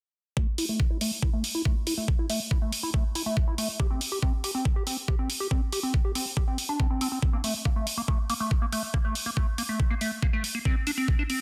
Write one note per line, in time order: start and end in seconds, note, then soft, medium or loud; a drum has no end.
0.37 0.47 A3 medium
0.37 kick loud
0.58 0.65 E4 medium
0.58 open hi-hat loud
0.69 0.79 A3 medium
0.80 kick loud
0.90 0.98 E4 medium
1.01 1.11 A3 medium
1.01 open hi-hat loud
1.22 1.30 E4 medium
1.22 kick loud
1.33 1.43 A3 medium
1.44 open hi-hat loud
1.55 1.62 E4 medium
1.65 1.76 A3 medium
1.65 kick loud
1.87 1.94 E4 medium
1.87 open hi-hat loud
1.97 2.08 A3 medium
2.08 kick loud
2.19 2.26 E4 medium
2.30 2.40 A3 medium
2.30 open hi-hat loud
2.51 2.58 E4 medium
2.51 kick loud
2.62 2.72 A3 medium
2.72 open hi-hat loud
2.83 2.90 E4 medium
2.94 3.04 A3 medium
2.94 kick loud
3.15 3.23 E4 medium
3.15 open hi-hat loud
3.26 3.36 A3 medium
3.37 kick loud
3.48 3.55 E4 medium
3.58 3.68 A3 medium
3.58 open hi-hat loud
3.80 3.87 G4 medium
3.80 kick loud
3.90 4.01 C4 medium
4.01 open hi-hat loud
4.12 4.19 G4 medium
4.22 4.33 C4 medium
4.22 kick loud
4.44 4.51 G4 medium
4.44 open hi-hat loud
4.55 4.65 C4 medium
4.65 kick loud
4.76 4.83 G4 medium
4.87 4.97 C4 medium
4.87 open hi-hat loud
5.08 5.15 G4 medium
5.08 kick loud
5.19 5.29 C4 medium
5.30 open hi-hat loud
5.40 5.48 G4 medium
5.51 5.61 C4 medium
5.51 kick loud
5.72 5.80 G4 medium
5.72 open hi-hat loud
5.83 5.93 C4 medium
5.94 kick loud
6.05 6.12 G4 medium
6.15 6.26 C4 medium
6.15 open hi-hat loud
6.37 6.44 G4 medium
6.37 kick loud
6.48 6.58 C4 medium
6.58 open hi-hat loud
6.69 6.79 D4 medium
6.80 6.87 C4 medium
6.80 kick loud
6.90 7.01 C4 medium
7.01 7.08 C4 loud
7.01 open hi-hat loud
7.12 7.19 C4 medium
7.22 kick loud
7.33 7.38 A#3 medium
7.44 7.54 A3 medium
7.44 open hi-hat loud
7.65 7.70 A#3 medium
7.65 kick loud
7.76 7.86 A3 medium
7.87 open hi-hat loud
7.97 8.02 A#3 medium
8.08 8.18 A3 medium
8.08 kick loud
8.30 8.34 A#3 medium
8.30 open hi-hat loud
8.40 8.51 A3 medium
8.51 kick loud
8.62 8.66 A#3 medium
8.72 8.83 A3 medium
8.72 open hi-hat loud
8.94 8.98 A#3 medium
8.94 kick loud
9.05 9.15 A3 medium
9.15 open hi-hat loud
9.26 9.30 A#3 medium
9.37 9.47 A3 medium
9.37 kick loud
9.58 9.63 A#3 medium
9.58 open hi-hat loud
9.69 9.79 A3 medium
9.80 kick loud
9.90 9.95 A#3 medium
10.01 10.11 A3 medium
10.01 open hi-hat loud
10.22 10.27 A#3 medium
10.22 kick loud
10.33 10.43 A3 medium
10.44 open hi-hat loud
10.55 10.59 A#3 medium
10.65 10.76 C4 medium
10.65 kick loud
10.87 10.91 D4 medium
10.87 open hi-hat loud
10.97 11.08 C4 medium
11.08 kick loud
11.19 11.23 D4 medium
11.30 11.40 C4 medium
11.30 open hi-hat loud